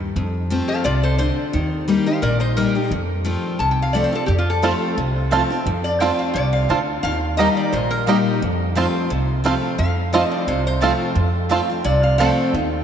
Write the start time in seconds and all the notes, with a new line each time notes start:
Already playing: D#2 G2
0.16 F2
0.50 F3 A3 C4 F4
0.68 A4 F5
0.84 C2 C3 F4 D5
1.03 A4 C5
1.18 D3 C5
1.53 D#2 D#3
1.88 G3 A#3 D#4 G4
2.06 D#4 G4 C5 F5
2.22 A#1 A#2 A#4 D5
2.40 D#4 C5
2.57 G3 A#3 D#4 G4 A#4
2.75 D#4 G4
2.91 F2
3.25 F3 A3 C4 F4
3.59 C2 C3 A5
3.71 G5
3.82 F5
3.93 F3 A3 C4 F4 D5
4.04 C5
4.12 C4 F4 A4
4.26 F2 G4
4.38 F4
4.50 A4
4.62 F3 A3 C4 F4 C5 A5
4.97 C2 C3
5.31 F3 A3 C4 F4 C5 A5
5.50 C4 F4
5.66 F2
5.84 D5
6.00 F3 A3 C4 F4 C5 G5 A5
6.19 F5
6.34 C2 C3 D5
6.53 F5
6.69 D2 D3 C4 F4 C5 A5
7.03 D#2 D#3 F5
7.37 G3 A#3 D#4 G4 D#5 A#5
7.57 D5
7.72 A#1 A#2 C5
7.91 A#4
8.07 G3 A#3 D#4 G4 D#5 A#5
8.42 F2
8.75 F3 A3 C4 F4 C5 A5
9.10 C2 C3
9.44 F3 A3 C4 F4 C5 A5
9.78 F2 F5
10.13 F3 A3 C4 F4 C5 D#5 A5
10.31 D5
10.47 C2 C3 C5
10.67 C5
10.81 F3 A3 C4 F4 C5 A5
11.15 F2
11.49 F3 A3 C4 F4 C5 A5
11.70 C4 F4
11.84 C2 C3 D5
12.03 F5
12.18 F3 A3 C4 F4 C5 G5 A5
12.54 D#2 D#3